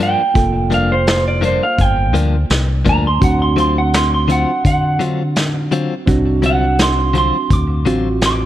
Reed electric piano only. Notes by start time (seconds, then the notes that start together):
Already playing: A#3 F4 A4
0.34 A#3 F4 A4
3.20 C4 D4 F#4
6.06 C4 D4 F#4
7.86 C4 F4 F#4